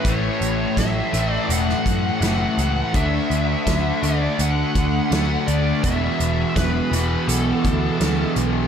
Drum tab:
HH |x-x-x-x-x-x-x-x-|x-x-x-x-x-x-x-x-|x-x-x-x-x-x-x-x-|
SD |----o----o--o---|----o-------o---|----o-------o---|
BD |o---o-----o-----|o---o-----o-----|o---o-----o-----|